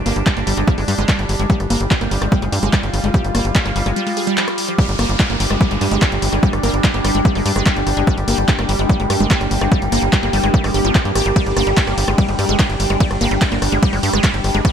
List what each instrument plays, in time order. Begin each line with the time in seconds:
Already playing: synth drone G3 D4
0.06 analog synth bass G1, synth arpeggio sound A#3, open hi-hat
0.16 analog synth bass G1, closed hi-hat
0.26 synth arpeggio sound G3, kick, clap, closed hi-hat
0.37 analog synth bass G1, synth arpeggio sound A#3, closed hi-hat
0.47 analog synth bass G1, synth arpeggio sound G3, open hi-hat
0.57 analog synth bass G1, synth arpeggio sound G#3, closed hi-hat
0.68 synth arpeggio sound G3, kick, closed hi-hat
0.78 analog synth bass G1, synth arpeggio sound G#3, open hi-hat
0.88 analog synth bass G2, synth arpeggio sound G3, open hi-hat
0.98 analog synth bass G1, synth arpeggio sound G#3, closed hi-hat
1.09 synth arpeggio sound G3, kick, cross-stick, clap, closed hi-hat
1.19 analog synth bass G1, closed hi-hat
1.29 analog synth bass G1, open hi-hat
1.39 analog synth bass G1, synth arpeggio sound G#3, closed hi-hat
1.50 synth arpeggio sound G3, synth drone F4, kick, closed hi-hat
1.60 analog synth bass G1, cross-stick, closed hi-hat
1.70 analog synth bass G1, synth arpeggio sound A#3, open hi-hat
1.81 analog synth bass G1
1.91 synth arpeggio sound G3, kick, clap, closed hi-hat
2.01 analog synth bass G1, synth arpeggio sound A#3, closed hi-hat
2.11 analog synth bass G1, synth arpeggio sound G3, open hi-hat
2.22 analog synth bass G1, synth arpeggio sound G#3, cross-stick, closed hi-hat
2.32 synth arpeggio sound G3, kick, closed hi-hat
2.42 analog synth bass G1, synth arpeggio sound G#3, closed hi-hat
2.52 analog synth bass G2, synth arpeggio sound G3, open hi-hat
2.63 analog synth bass G1, synth arpeggio sound G#3, closed hi-hat
2.73 synth arpeggio sound G3, kick, cross-stick, clap, closed hi-hat
2.83 analog synth bass G1, closed hi-hat
2.94 analog synth bass G1, open hi-hat
3.04 analog synth bass G1, synth arpeggio sound G#3, closed hi-hat
3.14 synth arpeggio sound G3, kick, closed hi-hat
3.24 analog synth bass G1, closed hi-hat
3.35 analog synth bass G1, synth arpeggio sound A#3, cross-stick, open hi-hat
3.45 analog synth bass G1, closed hi-hat
3.55 synth arpeggio sound G3, kick, clap, closed hi-hat
3.65 analog synth bass G1, synth arpeggio sound A#3, closed hi-hat
3.76 analog synth bass G1, synth arpeggio sound G3, open hi-hat
3.86 analog synth bass G1, synth arpeggio sound G#3, cross-stick, closed hi-hat
3.96 synth arpeggio sound G3, closed hi-hat, swell
4.07 synth arpeggio sound G#3, open hi-hat
4.17 synth arpeggio sound G#4, open hi-hat
4.27 synth arpeggio sound G3, closed hi-hat
4.37 synth arpeggio sound F3, clap, closed hi-hat
4.48 cross-stick, closed hi-hat
4.58 open hi-hat
4.68 synth arpeggio sound F3, closed hi-hat
4.78 synth arpeggio sound G3, synth drone G3 D4, ambient pad D4, kick, cross-stick, closed hi-hat, downlifter
4.89 analog synth bass G1, closed hi-hat
4.99 analog synth bass G1, synth arpeggio sound A#3, cross-stick, open hi-hat
5.04 ambient pad G5
5.09 analog synth bass G1, closed hi-hat
5.20 synth arpeggio sound G3, ambient pad G4, kick, clap, closed hi-hat
5.30 analog synth bass G1, synth arpeggio sound A#3, cross-stick, closed hi-hat
5.40 analog synth bass G1, synth arpeggio sound G3, open hi-hat
5.50 analog synth bass G1, synth arpeggio sound G#3, cross-stick
5.61 synth arpeggio sound G3, kick, closed hi-hat
5.71 analog synth bass G1, synth arpeggio sound G#3, closed hi-hat
5.81 analog synth bass G2, synth arpeggio sound G3, cross-stick, open hi-hat
5.92 analog synth bass G1, synth arpeggio sound G#3, closed hi-hat
6.02 synth arpeggio sound G3, kick, cross-stick, clap, closed hi-hat
6.12 analog synth bass G1, closed hi-hat
6.22 analog synth bass G1, open hi-hat
6.33 analog synth bass G1, synth arpeggio sound G#3, cross-stick, closed hi-hat
6.43 synth arpeggio sound G3, kick, closed hi-hat
6.53 analog synth bass G1, cross-stick, closed hi-hat
6.63 analog synth bass G1, synth arpeggio sound A#3, open hi-hat
6.74 analog synth bass G1, closed hi-hat
6.84 synth arpeggio sound G3, kick, cross-stick, clap, closed hi-hat
6.94 analog synth bass G1, synth arpeggio sound A#3, closed hi-hat
7.05 analog synth bass G1, synth arpeggio sound G3, cross-stick, open hi-hat
7.15 analog synth bass G1, synth arpeggio sound G#3, closed hi-hat
7.25 synth arpeggio sound G3, kick, closed hi-hat
7.35 analog synth bass G1, synth arpeggio sound G#3, cross-stick, open hi-hat
7.46 analog synth bass G2, synth arpeggio sound G3, open hi-hat
7.56 analog synth bass G1, synth arpeggio sound G#3, cross-stick, closed hi-hat
7.66 synth arpeggio sound G3, kick, clap, closed hi-hat
7.76 analog synth bass G1, closed hi-hat
7.87 analog synth bass G1, cross-stick, open hi-hat
7.97 analog synth bass G1, synth arpeggio sound G#3, closed hi-hat
8.07 synth arpeggio sound G3, synth drone A#3, kick, cross-stick, closed hi-hat
8.18 analog synth bass G1, closed hi-hat
8.28 analog synth bass G1, synth arpeggio sound A#3, open hi-hat
8.38 analog synth bass G1, cross-stick, closed hi-hat
8.48 synth arpeggio sound G3, kick, clap, closed hi-hat
8.59 analog synth bass G1, synth arpeggio sound A#3, cross-stick, closed hi-hat
8.69 analog synth bass G1, synth arpeggio sound G3, open hi-hat
8.79 analog synth bass G1, synth arpeggio sound G#3, closed hi-hat
8.89 synth arpeggio sound G3, kick, cross-stick, closed hi-hat
9.00 analog synth bass G1, synth arpeggio sound G#3, closed hi-hat
9.10 analog synth bass G2, synth arpeggio sound G3, cross-stick, open hi-hat
9.20 analog synth bass G1, synth arpeggio sound G#3, closed hi-hat
9.31 synth arpeggio sound G3, kick, clap, closed hi-hat
9.41 analog synth bass G1, cross-stick, closed hi-hat
9.51 analog synth bass G1, open hi-hat
9.61 analog synth bass G1, synth arpeggio sound G#3, cross-stick, closed hi-hat
9.72 synth arpeggio sound G3, kick, closed hi-hat
9.82 analog synth bass G1, closed hi-hat
9.92 analog synth bass G1, synth arpeggio sound A#3, cross-stick, open hi-hat
10.03 analog synth bass G1
10.13 synth arpeggio sound G3, kick, cross-stick, clap, closed hi-hat
10.23 analog synth bass G1, synth arpeggio sound A#3, closed hi-hat
10.33 analog synth bass G1, synth arpeggio sound G3, open hi-hat
10.44 analog synth bass G1, synth arpeggio sound G#3, cross-stick, closed hi-hat
10.54 synth arpeggio sound G3, kick, closed hi-hat
10.64 analog synth bass G1, synth arpeggio sound G#3, cross-stick, open hi-hat
10.74 analog synth bass G1, synth arpeggio sound G4, open hi-hat
10.85 analog synth bass G1, synth arpeggio sound F3, closed hi-hat
10.95 synth arpeggio sound F3, kick, cross-stick, clap, closed hi-hat
11.05 analog synth bass G2, closed hi-hat
11.15 analog synth bass G#1, synth arpeggio sound G4, cross-stick, open hi-hat
11.26 analog synth bass G1, synth arpeggio sound G3, closed hi-hat
11.36 synth arpeggio sound G3, synth drone D4, kick, cross-stick, closed hi-hat, ride
11.46 analog synth bass G1, closed hi-hat
11.57 analog synth bass G1, synth arpeggio sound A#3, cross-stick, open hi-hat
11.67 analog synth bass G1, synth arpeggio sound G3, closed hi-hat
11.77 synth arpeggio sound G3, kick, clap, closed hi-hat, ride
11.87 analog synth bass G1, synth arpeggio sound A#3, cross-stick, closed hi-hat
11.98 analog synth bass G1, open hi-hat
12.08 analog synth bass G1, synth arpeggio sound G#3, cross-stick, closed hi-hat
12.18 synth arpeggio sound G3, kick, closed hi-hat, ride
12.28 analog synth bass G1, synth arpeggio sound G#3, closed hi-hat
12.39 analog synth bass G2, synth arpeggio sound G3, cross-stick, open hi-hat
12.49 analog synth bass G1, synth arpeggio sound G#3, closed hi-hat
12.59 synth arpeggio sound G3, kick, cross-stick, clap, closed hi-hat, ride
12.70 analog synth bass G1, closed hi-hat
12.80 analog synth bass G1, open hi-hat
12.90 analog synth bass G1, synth arpeggio sound G#3, cross-stick, closed hi-hat
13.00 synth arpeggio sound G3, kick, closed hi-hat, ride
13.11 analog synth bass G1, cross-stick, closed hi-hat
13.21 analog synth bass G1, synth arpeggio sound A#3, open hi-hat
13.31 analog synth bass G1, synth arpeggio sound G3, closed hi-hat
13.42 synth arpeggio sound G3, kick, cross-stick, clap, closed hi-hat, ride
13.52 analog synth bass G1, synth arpeggio sound A#3, closed hi-hat
13.62 analog synth bass G1, cross-stick, open hi-hat
13.72 analog synth bass G1, synth arpeggio sound G#3, closed hi-hat
13.83 synth arpeggio sound G3, kick, closed hi-hat, ride
13.93 analog synth bass G1, synth arpeggio sound G#3, cross-stick, open hi-hat
14.03 analog synth bass G2, synth arpeggio sound G3, open hi-hat
14.13 analog synth bass G1, synth arpeggio sound G#3, cross-stick
14.24 synth arpeggio sound G3, kick, clap, closed hi-hat, ride
14.34 analog synth bass G1, closed hi-hat
14.44 analog synth bass G1, cross-stick, open hi-hat
14.55 analog synth bass G1, synth arpeggio sound G#3, closed hi-hat
14.65 synth arpeggio sound G3, kick, cross-stick, closed hi-hat, ride